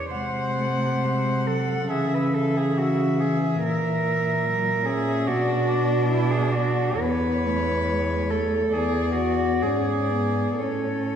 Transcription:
Already playing: C#5
0.11 C3 G#3 C5 F#5
0.34 F#5
0.57 A3 F#5
0.80 F#5
1.02 G#3 F#5
1.25 F#5
1.47 F#3 A4 F#5
1.69 F#5
1.91 C#3 E3 G#4 E5
2.14 B4 E5
2.34 A4 E5
2.57 G#4 E5
2.78 F#4 E5
3.00 E5
3.20 G#4 E5
3.43 E5
3.63 A#2 A#4 E5
3.84 E5
4.05 E5
4.25 E5
4.44 F#3 E5
4.65 E5
4.85 C#4 G#4 E5
5.08 E5
5.28 B2 D4 F#4 D5
5.50 D5
5.70 D5
5.90 D5
6.10 E4 D5
6.32 G#4 D5
6.53 F#4 D5
6.79 D5
7.00 E2 B3 B4 C#5
7.45 A3
7.89 G#3
8.31 A3 A4
8.73 E2 B3 G#4 D5
9.16 F#4
9.61 G#2 C#4 G#4 D5
10.09 B3
10.58 A2 C#4 A4 C#5

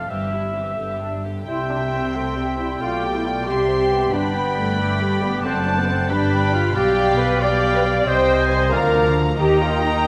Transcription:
0.08 G1 G2 E3 C4 G4 E5
0.32 G3 E4
0.54 E3 C4 G4
0.77 G1 G2 D3 B3 G4
1.01 G3 D4
1.24 D3 B3 G4
1.47 C2 C3 G3 E4 E5 G5 C6
1.69 D4
1.91 C4
2.15 A3 E5 G5 C6
2.36 G3
2.58 G3 E4
2.80 B1 B2 A3 F4 D5 G5 D6
3.03 G4
3.13 E4
3.25 F4
3.47 C2 C3 G3 G4 E5 G5 C6
3.68 C4
3.91 B3
4.12 G1 G2 D4 B4 D5 G5 B5
4.35 B3
4.57 A3
4.79 A3 D6
5.01 G3
5.22 G3 B3
5.44 F#1 F#2 A3 C4 C5 D5 F#5 A5
5.66 D4
5.77 B3
5.87 C4
6.08 G1 G2 G3 D4 B4 D5 G5 B5
6.53 F4
6.75 B1 B2 G3 G4 D5 F5 G5
7.18 B4
7.40 G3 D5 F5 G5
7.73 B4
7.84 D5
8.06 C2 C3 G3 C5 D#5 G5
8.39 G#5
8.50 C5
8.72 D2 D3 F3 A#4 D5 F5 A#5
9.38 D#2 D#3 G4 D#5 G5 A#5
9.61 F4
9.83 D#4

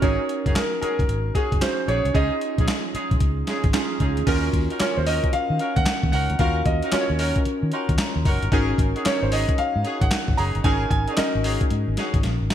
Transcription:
0.02 G#1 C#4 D#4 F#4 G#4 A#4 C#5, kick, closed hi-hat
0.29 closed hi-hat
0.45 F#1 C#4 D#4 F#4 G#4, kick, closed hi-hat
0.55 A#4, snare, clap, closed hi-hat
0.81 C#4 D#4 F#4 G#4 A#4, muted fingered electric bass stroke, closed hi-hat
0.99 F#1, kick, closed hi-hat
1.09 G#1, closed hi-hat
1.34 C#4 D#4 F#4 G#4, kick, closed hi-hat
1.52 F#1, kick, closed hi-hat
1.61 C#4 D#4 F#4 C5, snare, clap, closed hi-hat
1.88 A#1 C#4 D#4 F#4 G#4 C#5, closed hi-hat
2.05 C2, closed hi-hat
2.14 C#2 C#4 D#4 F4 G#4 D#5, kick, closed hi-hat
2.41 closed hi-hat
2.58 A#1 C#4 D#4 F4 G#4, kick, closed hi-hat
2.68 snare, clap, closed hi-hat
2.94 C#4 D#4 F4 G#4, muted fingered electric bass stroke, closed hi-hat
3.11 A#1, kick, closed hi-hat
3.20 C#2, kick, closed hi-hat
3.47 C#4 D#4 F4 G#4, snare, closed hi-hat
3.64 G#1, kick, closed hi-hat
3.74 C#4 D#4 F4 G#4, snare, clap, closed hi-hat
4.00 C#2 C#4 D#4 F4 G#4, kick, closed hi-hat
4.17 D2, closed hi-hat
4.27 D#2 C#4 D#4 F4 F#4 A#4, kick, closed hi-hat, crash
4.53 D#2, kick, closed hi-hat
4.70 C#4 D#4 F#4 A#4, closed hi-hat
4.80 C#4 F4 F#4 A#4 C#5, muted fingered electric bass stroke, snare, clap, closed hi-hat
4.97 D#2 C5
5.07 C#4 D#4 F#4 A#4 D#5, open hi-hat
5.24 kick, closed hi-hat
5.33 F5, muted fingered electric bass stroke, closed hi-hat
5.50 D#3
5.59 C#4 D#4 F#4 A#4, closed hi-hat
5.76 D#2 F#5, kick, closed hi-hat
5.86 snare, clap, closed hi-hat
6.03 D#2, kick
6.12 C#2 C#4 D#4 F#4 A#4 F#5, open hi-hat
6.30 D2, closed hi-hat
6.39 D#2 C#4 D#4 F4 F#4 A#4 F5, kick, closed hi-hat
6.65 D#2 D#5, kick, closed hi-hat
6.83 C#4 D#4 F#4 A#4, closed hi-hat
6.92 C#4 F4 F#4 A#4 C#5, muted fingered electric bass stroke, snare, clap, closed hi-hat
7.00 C#5
7.10 D#2
7.19 C#4 D#4 F#4 A#4, open hi-hat
7.36 kick, closed hi-hat
7.45 muted fingered electric bass stroke, closed hi-hat
7.63 D#3
7.72 C#4 D#4 F#4 A#4 C6, closed hi-hat
7.89 D#2, kick, closed hi-hat
7.98 A#5, snare, clap, closed hi-hat
8.16 D#2
8.25 F#1 C#4 D#4 F#4 A#4 F#5, kick, open hi-hat
8.43 G1, closed hi-hat
8.52 G#1 C#4 D#4 F#4 G#4 A#4, kick, closed hi-hat
8.78 G#1, kick, closed hi-hat
8.95 C#4 D#4 F#4 G#4, closed hi-hat
9.05 C#4 D#4 F#4 C#5, muted fingered electric bass stroke, snare, clap, closed hi-hat
9.22 G#1 C5
9.31 C#4 D#4 F#4 G#4 D#5, open hi-hat
9.49 kick, closed hi-hat
9.58 F5, muted fingered electric bass stroke, closed hi-hat
9.76 G#2
9.84 C#4 D#4 F#4 G#4, closed hi-hat
10.01 G#1 F#5, kick, closed hi-hat
10.11 snare, clap, closed hi-hat
10.28 G#1, kick
10.37 F#1 C#4 D#4 F#4 G#4 A#5, open hi-hat
10.55 G1, closed hi-hat
10.64 G#1 C#4 D#4 F#4 G#4 A#4 G#5, kick, closed hi-hat
10.90 G#1 G#5, kick, closed hi-hat
11.07 C#4 D#4 F#4 G#4, closed hi-hat
11.12 D5
11.17 C#4 D#4 F#4 A#4 D#5, muted fingered electric bass stroke, snare, clap, closed hi-hat
11.35 G#1
11.44 C#4 D#4 F#4 G#4, open hi-hat
11.61 kick, closed hi-hat
11.70 G#2, closed hi-hat
11.88 G#1
11.97 C#4 D#4 F#4 G#4, snare, closed hi-hat
12.14 G#1, kick, closed hi-hat
12.23 A#1, snare, closed hi-hat
12.41 G#1
12.50 C#4 D#4 F#4 G#4, snare, open hi-hat

